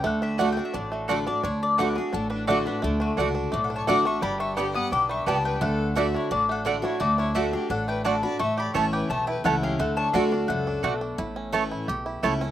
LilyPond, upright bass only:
\new Staff \with { instrumentName = "Upright bass" } { \clef bass \time 4/4 \key d \major \tempo 4 = 172 d,2 a,,2 | d,2 a,,2 | d,4 cis,4 b,,4 a,,4 | g,,2 b,,4 cis,4 |
d,2 a,,2 | d,2 a,,2 | a,,4 a,,4 b,,4 cis,4 | d,4 d,4 cis,4 b,,4 |
a,,2 b,,4 cis,4 | }